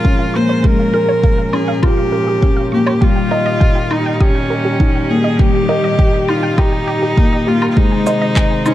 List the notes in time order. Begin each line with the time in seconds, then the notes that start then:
Already playing: A#2 F3 G#3 C#4 F4 A#4
0.04 C#4 F5, kick
0.19 F5
0.34 A#3 C5 C#6
0.49 C#5
0.64 G#3 G#4 A#4, kick
0.79 F5
0.94 A#4
1.09 C#5
1.23 F5, kick
1.38 F5
1.53 C#4 G#4 C#6, low woodblock
1.68 F5
1.83 F4 G4 A#5, kick, low woodblock
1.97 F5
2.12 A#4
2.28 G#4
2.42 C#4 F5, kick
2.56 F5
2.72 A#3 G4 C#6
2.86 C#5, low woodblock
3.01 D#3 G3 D#4 F4 G4, kick
3.16 G5
3.31 A#4 D#5
3.46 D#5
3.60 G5, kick
3.75 G5
3.90 D#4 G6, low woodblock
4.06 G5
4.14 D#4
4.20 C#4 G4 D#6, kick
4.35 G5
4.50 A#4
4.65 G4
4.80 D#4 G5, kick
4.96 G5
5.10 A#3 G#4 G6
5.24 D#5
5.39 G3 G4, kick
5.55 G5
5.69 A#4 D#5
5.84 D#5
5.99 G5, kick
6.13 G5
6.28 D#4 F4 G6, low woodblock
6.43 G5
6.58 D#4 G4 D#6, kick, low woodblock
6.72 G5
6.88 G4
7.03 G4
7.17 A#3 A#4, kick
7.33 D#5
7.47 A#3 F4 G4
7.62 A#4, low woodblock
7.70 F4
7.77 C3 D#3 G#3 D#4 G#4 C5, kick
7.92 G#5
8.06 C5 D#5, shaker
8.22 D#5
8.36 G#5, kick, clap, shaker
8.51 G#5
8.66 C#4 D#4 G6, low woodblock, shaker